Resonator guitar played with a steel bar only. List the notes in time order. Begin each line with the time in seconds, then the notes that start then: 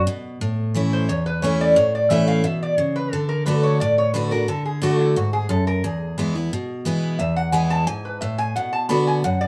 0.93 C5
1.09 C#5
1.26 B4
1.42 C#5
1.61 D5
1.77 C#5
1.95 D5
2.11 E5
2.28 F5
2.45 E5
2.63 D5
2.78 C#5
2.96 B4
3.12 A4
3.29 A#4
3.46 B4
3.63 C#5
3.80 D5
3.98 C#5
4.14 B4
4.31 A#4
4.48 A4
4.65 G#4
4.83 F#4
5.00 E4
5.17 F#4
5.33 G#4
5.50 A4
5.67 A#4
5.84 G#4
7.19 E5
7.36 F#5
7.52 G#5
7.70 A5
7.87 G#5
8.05 B4
8.21 E5
8.38 G#5
8.56 F#5
8.73 A5
8.89 B5
9.07 G#5
9.24 F#5
9.41 D5